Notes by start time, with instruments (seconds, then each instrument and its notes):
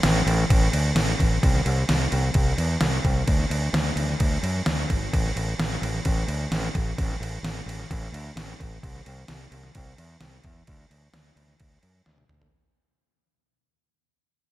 0.03 fingered electric bass A1, snare, crash
0.26 fingered electric bass A1, crash
0.50 fingered electric bass A1, kick, crash
0.73 fingered electric bass D2, crash
0.95 fingered electric bass A1, snare, crash
1.20 fingered electric bass A1, kick, crash
1.43 fingered electric bass C2, kick, crash
1.55 snare
1.66 fingered electric bass C2, crash
1.89 fingered electric bass C2, snare, crash
2.12 fingered electric bass C2, crash
2.34 fingered electric bass C2, kick, crash
2.58 fingered electric bass E2, crash
2.81 fingered electric bass C2, snare, crash
3.04 fingered electric bass C2, kick, crash
3.27 fingered electric bass D2, kick, crash
3.39 snare
3.50 fingered electric bass D2, crash
3.73 fingered electric bass D2, snare, crash
3.96 fingered electric bass D2, crash
4.09 snare
4.20 fingered electric bass D2, kick, crash
4.43 fingered electric bass F#2, crash
4.66 fingered electric bass D2, snare, crash
4.90 fingered electric bass G#1, kick, crash
5.13 fingered electric bass A1, kick, crash
5.26 snare
5.36 fingered electric bass A1, crash
5.59 fingered electric bass A1, snare, crash
5.82 fingered electric bass A1, crash
6.05 fingered electric bass A1, kick, crash
6.28 fingered electric bass D2, crash
6.51 fingered electric bass A1, snare, crash
6.75 fingered electric bass A1, kick, crash
6.98 fingered electric bass A1, kick, crash
7.10 snare
7.20 fingered electric bass A1, crash
7.43 fingered electric bass A1, snare, crash
7.66 fingered electric bass A1, crash
7.80 snare
7.91 fingered electric bass A1, kick, crash
8.12 fingered electric bass D2, crash
8.36 fingered electric bass A1, snare, crash
8.60 fingered electric bass A1, kick, crash
8.83 fingered electric bass C2, kick, crash
8.95 snare
9.06 fingered electric bass C2, crash
9.28 fingered electric bass C2, snare, crash
9.51 fingered electric bass C2, crash
9.63 snare
9.75 fingered electric bass C2, kick, crash
9.98 fingered electric bass E2, crash
10.21 fingered electric bass C2, snare, crash
10.44 fingered electric bass E2, kick, crash
10.67 fingered electric bass D2, kick, crash
10.90 fingered electric bass D2, crash
11.13 fingered electric bass D2, snare, crash
11.36 fingered electric bass D2, crash
11.48 snare
11.60 fingered electric bass D2, kick, crash
11.83 fingered electric bass F#2, crash
12.06 fingered electric bass D2, snare
12.18 high tom
12.29 fingered electric bass D2, mid tom
12.42 floor tom